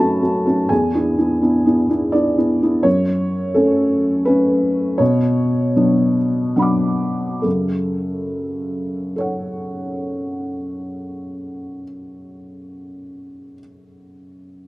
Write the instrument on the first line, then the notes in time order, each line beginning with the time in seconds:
felt piano
Already playing: F#2 B4 C#5 A5 B5 C#6
0.00 A3 C#4 F#4 A4
0.22 A3 C#4 F#4
0.46 A3 C#4 F#4
0.69 E2 G#4 G#5
0.94 B3 D4 E4
1.18 B3 D4 E4
1.42 B3 D4 E4
1.65 B3 D4 E4
1.89 B3 D4 E4
2.12 B3 D4 E4 D5
2.37 B3 D4 E4
2.62 B3 D4 E4
2.83 F#2 C#5
3.54 A3 C#4 A4
4.25 A3 C#4 B4
4.98 B2 C#5
5.76 F#3 B3 D4
6.56 F#3 B3 D4 F#5 B5
6.62 D6
7.42 F#2 C#3 A4
9.16 A4 C#5
9.20 F#5